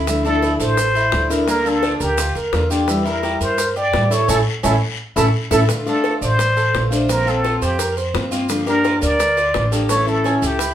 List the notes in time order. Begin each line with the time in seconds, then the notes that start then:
Already playing: D2 E4
0.07 D3 F3 A3 D4 E4, high bongo, long guiro, maracas
0.25 F3 A3 D4 E4 A4, high bongo, maracas
0.42 E4, high bongo, short guiro, maracas
0.60 A1 A4 C5, short guiro, maracas
0.77 muted steel-string acoustic guitar stroke, high bongo, long guiro, maracas
0.95 E4, high bongo, maracas
1.12 D2 F3 A3 D4 E4, high bongo, low bongo, short guiro, maracas
1.30 F3 A3 D4 E4 A#4, high bongo, short guiro, maracas
1.46 D3 A#3 D4 F4 A#4, high bongo, long guiro, maracas
1.64 A#3 D4 F4 A4, high bongo, maracas
1.83 D4, high bongo, short guiro, maracas
2.00 D2 G4 A#4, short guiro, maracas
2.18 F4, muted steel-string acoustic guitar stroke, high bongo, long guiro, maracas
2.35 D2 A#4, high bongo, maracas
2.52 E2 D3 A#3 D4 F4, high bongo, low bongo, short guiro, maracas
2.70 A#3 D4 F4 G4, short guiro, maracas
2.87 E3 G3 E4, high bongo, long guiro, maracas
3.05 G3 E4 A#4, high bongo, maracas
3.23 G4, high bongo, short guiro, maracas
3.41 G2 A#4 C5, short guiro, maracas
3.58 muted steel-string acoustic guitar stroke, high bongo, long guiro, maracas
3.76 G4 D5, high bongo, maracas
3.93 A2 E3 G3 E4, high bongo, low bongo, short guiro, maracas
4.10 G3 E4 A4 C#5, high bongo, short guiro, maracas
4.28 A1 A3 C#4 E4 A4, high bongo, long guiro, maracas
4.63 A1 A3 C#4 E4 A4, high bongo, long guiro, maracas
5.16 A1 A3 C#4 E4 A4, high bongo, long guiro, maracas
5.51 A1 A3 C#4 E4 A4, high bongo, long guiro, maracas
5.68 D3 A3 D4 F4, high bongo, long guiro, maracas
5.86 A3 D4 F4 A4 D5, high bongo, maracas
6.04 A4, high bongo, short guiro, maracas
6.21 A1 C5 D5, short guiro, maracas
6.39 muted steel-string acoustic guitar stroke, high bongo, long guiro, maracas
6.57 A4, high bongo, maracas
6.74 A#1 D3 A3 D4 F4, high bongo, low bongo, short guiro, maracas
6.90 A3 D4 F4 C5, high bongo, short guiro, maracas
7.08 F3 A#3 C4 F4 A#4, high bongo, long guiro, maracas
7.26 A#3 C4 F4 A4, high bongo, maracas
7.44 F4, high bongo, short guiro, maracas
7.62 F2 G4 C5, short guiro, maracas
7.79 A#4, muted steel-string acoustic guitar stroke, high bongo, long guiro, maracas
7.97 C5, high bongo, maracas
8.14 G2 F3 A#3 C4 F4, high bongo, low bongo, short guiro, maracas
8.31 A#3 C4 F4, short guiro, maracas
8.48 D3 F3 A#3 D4 G4, high bongo, long guiro, maracas
8.66 F3 A#3 D4 G4 A#4, high bongo, maracas
8.84 F4, high bongo, short guiro, maracas
9.02 D2 A#4 D5, short guiro, maracas
9.19 muted steel-string acoustic guitar stroke, high bongo, long guiro, maracas
9.37 F4, high bongo, maracas
9.54 A1 F3 A#3 D4 G4, high bongo, low bongo, short guiro, maracas
9.72 F3 A#3 D4 G4 A4, high bongo, short guiro, maracas
9.89 E3 A3 C#4 E4 C#5, high bongo, long guiro, maracas
10.07 A3 C#4 E4 A4, high bongo, maracas
10.24 C#4, high bongo, short guiro, maracas
10.42 C#2 G4 A4, short guiro, maracas
10.59 E4, muted steel-string acoustic guitar stroke, high bongo, long guiro, maracas